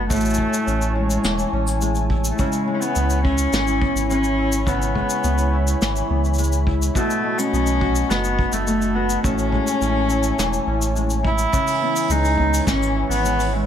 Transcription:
Already playing: F#1 D#3 A3 B3 F#4 A5
0.10 A1 A2 A3 E4 C#5 G#5, kick, shaker
0.16 shaker
0.20 shaker
0.25 shaker
0.30 shaker
0.34 shaker
0.38 kick
0.54 shaker
0.66 A1 C#4, shaker
0.82 shaker
0.95 G#3 E4
1.10 shaker
1.24 E1 E3, snare, shaker
1.39 shaker
1.52 A1 C#4
1.67 shaker
1.81 G#3, shaker
1.95 shaker
2.10 E4, kick
2.25 shaker
2.31 A3
2.38 C#3 G#3 E4 C#5 B5, kick, shaker
2.52 shaker
2.68 G#3
2.75 C#4
2.81 B3, shaker
2.96 C#2 B3, shaker
3.10 shaker
3.23 C#4 E4, kick
3.38 shaker
3.52 G#1 E3, snare, shaker
3.67 shaker
3.81 B3, kick
3.95 G#1, shaker
4.10 G#3 C#4, shaker
4.24 shaker
4.38 E4
4.52 shaker
4.66 C#3 B3 E4, kick, shaker
4.82 shaker
4.95 G#3, kick
5.10 shaker
5.24 C#2 B3, shaker
5.38 shaker
5.53 E4
5.67 shaker
5.81 G#1 E3, snare, shaker
5.96 shaker
6.10 C#2 B3
6.25 shaker
6.34 shaker
6.38 G#3, shaker
6.44 shaker
6.52 shaker
6.67 E4, kick
6.82 shaker
6.95 B2 A3 F#4 D#5 A5, kick, shaker
7.10 shaker
7.23 A3
7.38 C#4, shaker
7.53 B1 B3, shaker
7.67 shaker
7.81 F#4, kick
7.95 shaker
8.10 F#1 D#3 B3, snare, shaker
8.24 shaker
8.39 B3, kick
8.52 F#1 A3, shaker
8.67 A3, shaker
8.82 shaker
8.95 B3 F#4
9.10 shaker
9.24 A1 A2 C#4 E4 C#5 G#5, kick, shaker
9.38 shaker
9.52 G#3, kick
9.67 shaker
9.81 A1 C#4, shaker
10.10 E4, shaker
10.23 shaker
10.38 E1 E3, snare, shaker
10.53 shaker
10.67 A1 C#4
10.82 shaker
10.96 G#3, shaker
11.10 shaker
11.25 E4, kick
11.38 shaker
11.52 C#3 E3 C#5 G#5 B5, kick, shaker
11.67 open hi-hat, shaker
11.82 B3
11.95 open hi-hat, shaker
12.09 C#2 G#3 D#4, shaker
12.25 open hi-hat, shaker
12.38 B3, kick
12.54 open hi-hat, shaker
12.67 G#1 E3 C#4, kick, snare, shaker
12.83 shaker
12.95 E4
13.09 G#1 B3, open hi-hat, shaker
13.24 G#3, shaker
13.40 open hi-hat, shaker
13.52 G#3 E4

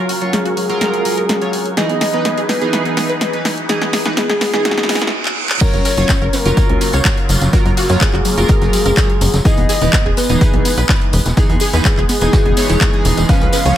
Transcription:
Already playing: F#3 C#4 F#4 A#4 F5, riser
0.09 F#4, open hi-hat
0.21 F#3 F4 C#5, closed hi-hat
0.33 F#3 G#4, snare, closed hi-hat
0.45 F#4, closed hi-hat
0.57 F#3, open hi-hat
0.69 F#3 F4 A#4, closed hi-hat
0.81 A#4, snare, closed hi-hat
0.94 F#3, closed hi-hat
1.05 F#3 F4 A#4, open hi-hat
1.18 A#4, closed hi-hat
1.29 snare, closed hi-hat
1.42 F#3 F4 C#5, closed hi-hat
1.53 open hi-hat
1.66 closed hi-hat
1.77 E3 D#4 G#4 B4 D#5, snare, closed hi-hat
1.90 B3, closed hi-hat
2.01 G#4, snare, open hi-hat
2.13 E3 B3 D#4 B4, closed hi-hat
2.25 B3, snare, closed hi-hat
2.38 G#4, closed hi-hat
2.49 B3 B4, snare, open hi-hat
2.62 E3 B3 D#4 G#4, closed hi-hat
2.73 B4, snare, closed hi-hat
2.85 B3, closed hi-hat
2.97 E3 B3 D#4 G#4, snare, open hi-hat
3.09 B4, closed hi-hat
3.21 snare, closed hi-hat
3.33 E3 D#4 B4, closed hi-hat
3.45 snare, open hi-hat
3.58 closed hi-hat
3.69 E3 D#4 G#4, snare, closed hi-hat
3.82 B3, snare, closed hi-hat
3.93 G#4, snare, open hi-hat
4.05 E3 B3 D#4 B4, snare, closed hi-hat
4.17 B3 G#4, snare, closed hi-hat
4.29 G#4, snare, closed hi-hat
4.41 B3, snare, open hi-hat
4.54 E3 B3 D#4 G#4, snare, closed hi-hat
4.65 F#4, snare, closed hi-hat, reverse cymbal
4.71 snare
4.78 B3, snare, closed hi-hat
4.83 snare
4.89 E3 B3 D#4 G#4, snare, open hi-hat
4.95 snare
5.02 E4, snare, closed hi-hat
5.07 snare
5.25 clap
5.49 clap
5.60 C#3 F#3 A#3 F4 A#4 C#5, kick, closed hi-hat, crash, tambourine
5.73 F#1 C#4, closed hi-hat
5.85 A#4, snare, closed hi-hat, open hi-hat, tambourine
5.97 F#1 F#3 C#4 F4 C#5, closed hi-hat, tambourine
6.09 C#4, kick, snare, clap, closed hi-hat, tambourine
6.21 F#1 A#4
6.33 C#4 A#4, snare, closed hi-hat, open hi-hat, tambourine
6.45 F#1 F#3 C#4 F4 A#4, snare, closed hi-hat, tambourine
6.57 C#5, kick, closed hi-hat, tambourine
6.69 C#2 C#4, closed hi-hat
6.81 C#4, closed hi-hat, open hi-hat, tambourine
6.93 C#2 C#5, closed hi-hat, tambourine
7.05 F#3 F4 C#5, kick, snare, clap, closed hi-hat
7.17 closed hi-hat
7.29 F#1, closed hi-hat, open hi-hat, tambourine
7.41 F#1, snare, closed hi-hat, tambourine
7.53 F#3 F4 F#4 A#4, kick, closed hi-hat, tambourine
7.65 F#2 F#3, closed hi-hat
7.77 F#4, open hi-hat, tambourine
7.89 F#2 F#3 F4 C#5, snare, closed hi-hat, tambourine
8.01 G#4, kick, snare, clap, closed hi-hat, tambourine
8.14 F#1 F#4, clap
8.25 F#3, closed hi-hat, open hi-hat, tambourine
8.37 F#1 F#3 F4 A#4, closed hi-hat, tambourine
8.48 A#4, kick, closed hi-hat, tambourine
8.61 F#1 F#3, snare, closed hi-hat
8.73 F#3, snare, closed hi-hat, open hi-hat, tambourine
8.85 F#1 A#4, closed hi-hat, tambourine
8.96 F#3 F4 C#5, kick, snare, clap, closed hi-hat, tambourine
9.10 closed hi-hat
9.21 F#1, closed hi-hat, open hi-hat, tambourine
9.34 F#1, snare, closed hi-hat, tambourine
9.45 E3 G#3 B3 D#4 G#4 D#5, kick, closed hi-hat, tambourine
9.57 E1 B3, closed hi-hat
9.69 G#4, snare, closed hi-hat, open hi-hat, tambourine
9.81 E1 E3 B3 D#4 B4, closed hi-hat, tambourine
9.93 B3, kick, snare, clap, closed hi-hat, tambourine
10.06 E1 G#4
10.17 B3 B4, snare, closed hi-hat, open hi-hat, tambourine
10.29 E1 E3 B3 D#4 G#4, snare, closed hi-hat, tambourine
10.41 B4, kick, closed hi-hat, tambourine
10.53 B1 B3, closed hi-hat
10.65 B3, closed hi-hat, open hi-hat, tambourine
10.77 B1 B4, closed hi-hat, tambourine
10.89 E3 D#4 B4, kick, snare, clap, closed hi-hat
11.02 closed hi-hat
11.13 E1, closed hi-hat, open hi-hat, tambourine
11.26 E1, snare, closed hi-hat, tambourine
11.37 E3 D#4 G#4, kick, closed hi-hat, tambourine
11.50 E2 B3, closed hi-hat
11.60 G#4, open hi-hat, tambourine
11.73 E2 E3 B3 D#4 B4, snare, closed hi-hat, tambourine
11.85 B3 G#4, kick, snare, clap, closed hi-hat, tambourine
11.97 E1 G#4, clap
12.09 B3, closed hi-hat, open hi-hat, tambourine
12.21 E1 E3 B3 D#4 G#4, closed hi-hat, tambourine
12.33 F#4, kick, snare, closed hi-hat, tambourine
12.45 E1 B3, closed hi-hat
12.57 E3 B3 D#4 C#5, snare, closed hi-hat, open hi-hat, tambourine
12.69 E1 E4, snare, closed hi-hat, tambourine
12.80 kick, snare, clap, closed hi-hat, tambourine
12.93 E3 D#4 G#4, closed hi-hat
13.05 E1, closed hi-hat, open hi-hat, tambourine
13.17 E1, snare, closed hi-hat, tambourine
13.29 F3 C#4 B4 F5, kick, closed hi-hat, tambourine
13.41 C#2 C#4, closed hi-hat
13.53 B4, snare, closed hi-hat, open hi-hat, tambourine
13.65 C#2 F3 C#4 C#5, closed hi-hat, tambourine

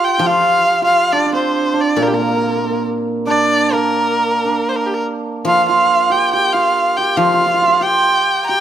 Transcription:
Already playing: F3 F4 G4
0.04 G5
0.18 F3 G4
0.26 F4 F5
0.82 F4 F5
1.12 D4 D5
1.26 D4
1.32 C4 C5
1.73 D4
1.81 D5
1.96 A#2 A#3
2.03 A#4
2.07 G4
2.12 A#3 A#4
2.20 A#3
2.28 A#3
2.36 A#3
2.41 A#3
2.48 A#3
2.55 A#3
2.64 A#3
2.70 A#3
3.27 D4 D5
3.73 A#3 A#4
4.45 D4
4.69 C5
4.76 A#4
4.86 G4
4.94 A#4
5.45 F3 F4 F5
5.69 F4 F5
6.10 G4 G5
6.33 G4 G5
6.53 F4 F5
6.96 G4 G5
7.17 F3 F4 F5
7.25 F4
7.34 F4
7.41 F4
7.46 F4
7.54 F4
7.62 F4
7.68 F4
7.81 G4 G5
8.44 G5 A#5
8.49 G4

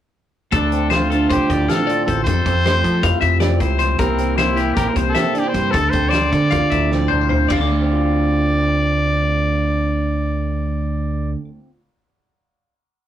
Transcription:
0.52 D2 D4 A4, kick, closed hi-hat
0.72 C4, closed hi-hat
0.90 A3 F4 C5, snare, closed hi-hat
1.10 D3 A4, closed hi-hat
1.30 C2 F4 G4 C5, kick, snare, closed hi-hat
1.50 D2 A2 D5, kick, closed hi-hat
1.68 C4 A4 F5, snare, closed hi-hat
1.87 F4 D5, closed hi-hat
2.06 A1 D2 A4 C5, kick, closed hi-hat
2.24 F2 A4 C5, kick, closed hi-hat
2.46 F2 C4, kick, closed hi-hat
2.66 A3 C5, snare, closed hi-hat
2.84 F3 A4, kick, closed hi-hat
3.03 F2 E4 F5, kick, closed hi-hat
3.21 F2 C3 E5, kick, closed hi-hat
3.40 C4 D5, snare, closed hi-hat
3.60 C#2 E4 C5, kick, closed hi-hat
3.79 F2 C5, snare, closed hi-hat
3.98 C2 C3 E3 A#3 C4 A#4, kick, closed hi-hat
4.03 C4 E4
4.18 C4, closed hi-hat
4.37 A#3 E4 C5, snare, closed hi-hat
4.56 E3 G4, snare, closed hi-hat
4.75 A#1 E4 G4 A#4, kick, closed hi-hat
4.89 C5
4.94 C2 C3 C5, kick, closed hi-hat
5.09 A4
5.15 C4 E5, snare, closed hi-hat
5.34 D4 D5, closed hi-hat
5.39 G4
5.44 E4
5.48 C5
5.53 G2 C3 C5, kick, snare, closed hi-hat
5.71 D2 A4, kick, closed hi-hat
5.90 D2 C4 C5, kick, closed hi-hat
6.09 A3 C5 D5, snare, closed hi-hat
6.31 D3 A4, kick, closed hi-hat
6.51 D2 F4 F5, kick, closed hi-hat
6.70 D2 A2 E5, kick, closed hi-hat
6.91 C4 D5, snare
7.08 D2 D4 C5, mid tom
7.21 F4
7.29 D2 C5, floor tom
7.48 D2 D5 F5, kick, crash
7.56 A5
7.61 D3 D6
7.71 A3
7.81 C4
7.91 F4

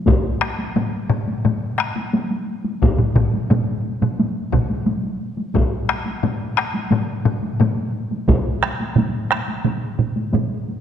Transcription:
0.06 taiko, taiko low-mid, taiko high
0.41 taiko rim
0.59 taiko high
0.76 taiko low-mid, taiko high
1.09 taiko low-mid
1.27 taiko high
1.45 taiko low-mid, taiko high
1.78 taiko rim
1.96 taiko high
2.13 taiko high
2.31 taiko high
2.64 taiko high
2.82 taiko, taiko low-mid, taiko mid, taiko high
2.99 taiko low-mid, taiko mid
3.15 taiko, taiko low-mid, taiko mid
3.34 taiko high
3.50 taiko low-mid, taiko mid, taiko high
4.02 taiko low-mid, taiko mid, taiko high
4.19 taiko high
4.52 taiko, taiko low-mid, taiko mid
4.70 taiko high
4.86 taiko high
5.03 taiko high
5.37 taiko high
5.54 taiko, taiko low-mid, taiko high
5.89 taiko rim
6.06 taiko high
6.23 taiko low-mid, taiko high
6.58 taiko rim
6.75 taiko high
6.91 taiko low-mid, taiko high
7.25 taiko low-mid
7.43 taiko high
7.60 taiko low-mid, taiko high
7.77 taiko high
8.11 taiko high
8.28 taiko, taiko mid, taiko high
8.63 taiko rim
8.81 taiko high
8.96 taiko mid, taiko high
9.31 taiko rim
9.48 taiko high
9.65 taiko mid, taiko high
9.99 taiko mid
10.16 taiko high
10.33 taiko mid, taiko high
10.49 taiko high

